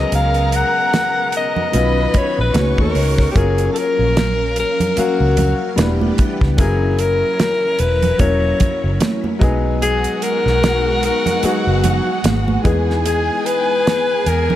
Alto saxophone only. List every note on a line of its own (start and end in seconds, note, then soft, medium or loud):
0.00 0.13 D#5 loud
0.15 0.57 F5 loud
0.56 1.35 F#5 loud
1.37 2.19 D#5 loud
2.17 2.39 C#5 loud
2.41 2.77 B4 medium
2.81 3.28 A#4 medium
3.31 3.40 G4 medium
3.38 3.71 G#4 loud
3.73 3.80 A4 medium
3.78 4.58 A#4 loud
4.59 4.96 A#4 loud
4.99 5.75 F#4 medium
6.61 7.01 G#4 medium
7.00 7.81 A#4 loud
7.80 8.20 B4 loud
8.20 8.97 C#5 loud
9.82 10.25 G#4 loud
10.23 11.04 A#4 loud
11.05 11.47 A#4 loud
11.45 12.26 F#4 medium
13.07 13.47 G#4 loud
13.46 14.29 B4 loud
14.27 14.56 A#4 loud